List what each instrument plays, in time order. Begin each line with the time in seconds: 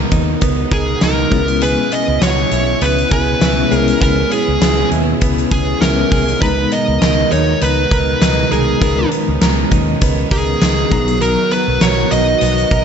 Already playing: string machine B2 D#3 G#3 B3 D#4, fm electric piano G#3 B3 D#4 A#4, clean electric guitar B3 D#4 A#4
0.11 fingered electric bass D#2, clean electric guitar D#4, kick, closed hi-hat
0.41 fingered electric bass C#2, clean electric guitar B3, kick, closed hi-hat
0.71 fingered electric bass C#2, lead electric guitar G#4, clean electric guitar A#4, kick, closed hi-hat
1.01 fingered electric bass C#2, clean electric guitar D#4, lead electric guitar A#4, snare, closed hi-hat
1.31 fingered electric bass C#2, string machine B2 G#3 B3 C#4 E4, fm electric piano G#3 B3 C#4 E4, clean electric guitar B3, kick, closed hi-hat
1.48 closed hi-hat
1.61 clean electric guitar B3 G#4, lead electric guitar B4, closed hi-hat
1.92 clean electric guitar B3, lead electric guitar D#5, closed hi-hat
2.08 fingered electric bass C#2
2.22 fingered electric bass C#2, clean electric guitar F#4, lead electric guitar C#5, snare, closed hi-hat
2.38 clean electric guitar G#4
2.51 fingered electric bass B1, clean electric guitar E4, closed hi-hat
2.81 fingered electric bass C#2, clean electric guitar B3, lead electric guitar B4, closed hi-hat
2.98 closed hi-hat
3.11 fingered electric bass C#2, clean electric guitar G#4, lead electric guitar B4, kick, closed hi-hat
3.41 fingered electric bass C#2, clean electric guitar E4, snare, closed hi-hat
3.70 fingered electric bass C2, fm electric piano G#3 B3 C#4 E4, clean electric guitar G#4, closed hi-hat
3.75 lead electric guitar A#4
3.88 closed hi-hat
4.01 fingered electric bass C#2, clean electric guitar B3 G#4, lead electric guitar A#4, kick, closed hi-hat
4.31 clean electric guitar B3, lead electric guitar G#4, closed hi-hat
4.48 fingered electric bass C#2
4.61 fingered electric bass C#2, clean electric guitar G#4, snare, closed hi-hat
4.91 fingered electric bass D#2, clean electric guitar E4, closed hi-hat
5.21 fingered electric bass C#2, clean electric guitar B3, kick, closed hi-hat
5.38 closed hi-hat
5.51 fingered electric bass C#2, clean electric guitar G#4, lead electric guitar G#4, kick, closed hi-hat
5.81 fingered electric bass C#2, fm electric piano G#3 B3 C#4 E4, clean electric guitar E4, lead electric guitar A#4, snare, closed hi-hat
6.12 fingered electric bass C2, clean electric guitar G#4, kick, open hi-hat
6.28 closed hi-hat
6.40 fingered electric bass C#2, string machine B2 D#3 D#4, fm electric piano G#3 B3 D#4 A#5, clean electric guitar B3 A#4, lead electric guitar B4, kick, closed hi-hat
6.72 clean electric guitar B3, lead electric guitar D#5, closed hi-hat
6.88 fingered electric bass C#2
7.02 fingered electric bass C#2, clean electric guitar A#4, snare, closed hi-hat
7.32 fingered electric bass D#2, clean electric guitar D#4, lead electric guitar C#5, closed hi-hat
7.61 fingered electric bass C#2, clean electric guitar B3, lead electric guitar B4, closed hi-hat
7.91 fingered electric bass C#2, clean electric guitar A#4, kick, closed hi-hat
8.21 fingered electric bass C#2, clean electric guitar D#4, lead electric guitar B4, snare, closed hi-hat
8.52 fingered electric bass C2, lead electric guitar G#4, clean electric guitar A#4, closed hi-hat
8.80 fingered electric bass C#2, fm electric piano G#3 B3 D#4 A#4, clean electric guitar B3 A#4, string machine C#4, kick, closed hi-hat
9.11 clean electric guitar B3, closed hi-hat
9.28 fingered electric bass C#2
9.41 fingered electric bass C#2, clean electric guitar A#4, snare, closed hi-hat
9.71 fingered electric bass D#2, clean electric guitar D#4, kick, closed hi-hat
10.01 fingered electric bass C#2, clean electric guitar B3, kick, closed hi-hat
10.31 fingered electric bass C#2, lead electric guitar G#4, clean electric guitar A#4, kick, closed hi-hat
10.61 fingered electric bass C#2, clean electric guitar D#4, snare, closed hi-hat
10.90 fingered electric bass B1, fm electric piano F#3 B3 D#4 A#5, clean electric guitar F#3, string machine F#3 B3 F#4, kick, closed hi-hat
11.08 closed hi-hat
11.21 clean electric guitar F#3 A#4, lead electric guitar A#4, closed hi-hat
11.51 clean electric guitar B3, lead electric guitar B4, closed hi-hat
11.68 fingered electric bass B1
11.81 fingered electric bass B1, clean electric guitar A#4, lead electric guitar C#5, snare, closed hi-hat
12.11 fingered electric bass B1, clean electric guitar D#4, lead electric guitar D#5, closed hi-hat
12.41 fingered electric bass B1, clean electric guitar B3, closed hi-hat
12.58 closed hi-hat
12.71 fingered electric bass B1, clean electric guitar A#4, kick, closed hi-hat